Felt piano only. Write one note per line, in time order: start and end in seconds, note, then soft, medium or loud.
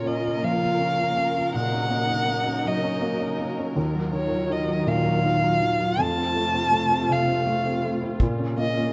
0.00 1.50 A#2 soft
0.00 0.06 C#4 soft
0.00 0.25 F4 soft
0.06 0.78 C#4 soft
0.25 0.61 F4 soft
0.43 1.51 F3 medium
0.63 0.97 F4 soft
0.79 1.16 C#4 soft
0.99 1.35 F4 soft
1.17 1.53 C#4 soft
1.36 1.54 F4 soft
1.55 3.73 A#2 soft
1.72 2.09 C#4 soft
1.90 2.27 A#3 soft
2.10 2.46 C#4 soft
2.28 3.00 A#3 soft
2.47 2.82 C#4 soft
2.65 3.73 F#3 medium
2.83 3.19 C#4 soft
3.01 3.38 A#3 soft
3.20 3.57 C#4 soft
3.39 3.75 A#3 soft
3.59 3.76 C#4 soft
3.76 5.94 D#2 medium
3.94 4.29 F#3 soft
4.13 4.48 D#3 soft
4.31 4.67 F#3 soft
4.49 5.23 D#3 soft
4.68 5.04 F#3 soft
4.86 5.95 A#2 medium
5.06 5.42 F#3 soft
5.24 5.60 D#3 soft
5.44 5.79 F#3 soft
5.61 5.97 D#3 soft
5.80 5.98 F#3 soft
5.99 8.16 F2 soft
6.17 6.53 C4 soft
6.36 6.71 A3 soft
6.54 6.90 C4 soft
6.72 7.45 A3 soft
6.91 7.26 C4 soft
7.09 8.17 C3 medium
7.28 7.64 C4 soft
7.46 7.82 A3 soft
7.65 8.02 C4 soft
7.84 8.19 A3 soft
8.03 8.20 C4 soft
8.21 8.93 A#2 medium
8.39 8.76 C#4 soft
8.57 8.93 A#3 soft
8.77 8.93 C#4 soft